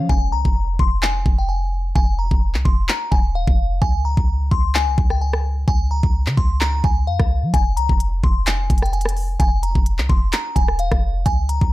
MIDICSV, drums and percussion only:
0, 0, Header, 1, 2, 480
1, 0, Start_track
1, 0, Key_signature, -4, "minor"
1, 0, Tempo, 465116
1, 99, Time_signature, 4, 2, 24, 8
1, 12104, End_track
2, 0, Start_track
2, 0, Title_t, "Drums"
2, 98, Note_on_c, 9, 36, 108
2, 201, Note_off_c, 9, 36, 0
2, 466, Note_on_c, 9, 36, 88
2, 569, Note_off_c, 9, 36, 0
2, 819, Note_on_c, 9, 36, 93
2, 922, Note_off_c, 9, 36, 0
2, 1059, Note_on_c, 9, 39, 120
2, 1162, Note_off_c, 9, 39, 0
2, 1298, Note_on_c, 9, 36, 98
2, 1401, Note_off_c, 9, 36, 0
2, 2019, Note_on_c, 9, 36, 109
2, 2122, Note_off_c, 9, 36, 0
2, 2386, Note_on_c, 9, 36, 89
2, 2489, Note_off_c, 9, 36, 0
2, 2626, Note_on_c, 9, 39, 67
2, 2729, Note_off_c, 9, 39, 0
2, 2739, Note_on_c, 9, 36, 89
2, 2842, Note_off_c, 9, 36, 0
2, 2979, Note_on_c, 9, 39, 117
2, 3082, Note_off_c, 9, 39, 0
2, 3218, Note_on_c, 9, 36, 104
2, 3321, Note_off_c, 9, 36, 0
2, 3586, Note_on_c, 9, 36, 102
2, 3689, Note_off_c, 9, 36, 0
2, 3939, Note_on_c, 9, 36, 110
2, 4042, Note_off_c, 9, 36, 0
2, 4306, Note_on_c, 9, 36, 85
2, 4410, Note_off_c, 9, 36, 0
2, 4659, Note_on_c, 9, 36, 93
2, 4762, Note_off_c, 9, 36, 0
2, 4899, Note_on_c, 9, 39, 122
2, 5002, Note_off_c, 9, 39, 0
2, 5138, Note_on_c, 9, 36, 104
2, 5241, Note_off_c, 9, 36, 0
2, 5266, Note_on_c, 9, 37, 67
2, 5370, Note_off_c, 9, 37, 0
2, 5505, Note_on_c, 9, 37, 97
2, 5608, Note_off_c, 9, 37, 0
2, 5859, Note_on_c, 9, 36, 113
2, 5962, Note_off_c, 9, 36, 0
2, 6226, Note_on_c, 9, 36, 83
2, 6330, Note_off_c, 9, 36, 0
2, 6466, Note_on_c, 9, 39, 67
2, 6569, Note_off_c, 9, 39, 0
2, 6579, Note_on_c, 9, 36, 93
2, 6682, Note_off_c, 9, 36, 0
2, 6819, Note_on_c, 9, 39, 122
2, 6922, Note_off_c, 9, 39, 0
2, 7058, Note_on_c, 9, 36, 100
2, 7161, Note_off_c, 9, 36, 0
2, 7425, Note_on_c, 9, 37, 91
2, 7426, Note_on_c, 9, 36, 99
2, 7528, Note_off_c, 9, 37, 0
2, 7529, Note_off_c, 9, 36, 0
2, 7778, Note_on_c, 9, 42, 72
2, 7779, Note_on_c, 9, 36, 111
2, 7882, Note_off_c, 9, 36, 0
2, 7882, Note_off_c, 9, 42, 0
2, 8020, Note_on_c, 9, 42, 82
2, 8124, Note_off_c, 9, 42, 0
2, 8146, Note_on_c, 9, 36, 84
2, 8250, Note_off_c, 9, 36, 0
2, 8258, Note_on_c, 9, 42, 83
2, 8361, Note_off_c, 9, 42, 0
2, 8499, Note_on_c, 9, 36, 96
2, 8602, Note_off_c, 9, 36, 0
2, 8738, Note_on_c, 9, 42, 82
2, 8739, Note_on_c, 9, 39, 125
2, 8841, Note_off_c, 9, 42, 0
2, 8842, Note_off_c, 9, 39, 0
2, 8978, Note_on_c, 9, 36, 101
2, 8979, Note_on_c, 9, 42, 67
2, 9059, Note_off_c, 9, 42, 0
2, 9059, Note_on_c, 9, 42, 54
2, 9081, Note_off_c, 9, 36, 0
2, 9106, Note_on_c, 9, 37, 67
2, 9139, Note_off_c, 9, 42, 0
2, 9139, Note_on_c, 9, 42, 39
2, 9210, Note_off_c, 9, 37, 0
2, 9219, Note_off_c, 9, 42, 0
2, 9219, Note_on_c, 9, 42, 50
2, 9299, Note_off_c, 9, 42, 0
2, 9299, Note_on_c, 9, 42, 68
2, 9345, Note_on_c, 9, 37, 95
2, 9378, Note_off_c, 9, 42, 0
2, 9378, Note_on_c, 9, 42, 84
2, 9448, Note_off_c, 9, 37, 0
2, 9459, Note_on_c, 9, 46, 61
2, 9481, Note_off_c, 9, 42, 0
2, 9562, Note_off_c, 9, 46, 0
2, 9698, Note_on_c, 9, 42, 71
2, 9699, Note_on_c, 9, 36, 113
2, 9801, Note_off_c, 9, 42, 0
2, 9802, Note_off_c, 9, 36, 0
2, 9940, Note_on_c, 9, 42, 84
2, 10043, Note_off_c, 9, 42, 0
2, 10066, Note_on_c, 9, 36, 86
2, 10169, Note_off_c, 9, 36, 0
2, 10177, Note_on_c, 9, 42, 84
2, 10280, Note_off_c, 9, 42, 0
2, 10305, Note_on_c, 9, 39, 66
2, 10409, Note_off_c, 9, 39, 0
2, 10419, Note_on_c, 9, 36, 93
2, 10522, Note_off_c, 9, 36, 0
2, 10657, Note_on_c, 9, 42, 82
2, 10658, Note_on_c, 9, 39, 119
2, 10761, Note_off_c, 9, 42, 0
2, 10762, Note_off_c, 9, 39, 0
2, 10898, Note_on_c, 9, 36, 99
2, 10901, Note_on_c, 9, 42, 66
2, 11001, Note_off_c, 9, 36, 0
2, 11004, Note_off_c, 9, 42, 0
2, 11026, Note_on_c, 9, 37, 69
2, 11129, Note_off_c, 9, 37, 0
2, 11134, Note_on_c, 9, 42, 80
2, 11237, Note_off_c, 9, 42, 0
2, 11264, Note_on_c, 9, 37, 95
2, 11266, Note_on_c, 9, 36, 94
2, 11367, Note_off_c, 9, 37, 0
2, 11369, Note_off_c, 9, 36, 0
2, 11618, Note_on_c, 9, 36, 108
2, 11618, Note_on_c, 9, 42, 72
2, 11721, Note_off_c, 9, 42, 0
2, 11722, Note_off_c, 9, 36, 0
2, 11859, Note_on_c, 9, 42, 84
2, 11963, Note_off_c, 9, 42, 0
2, 11986, Note_on_c, 9, 36, 85
2, 12089, Note_off_c, 9, 36, 0
2, 12104, End_track
0, 0, End_of_file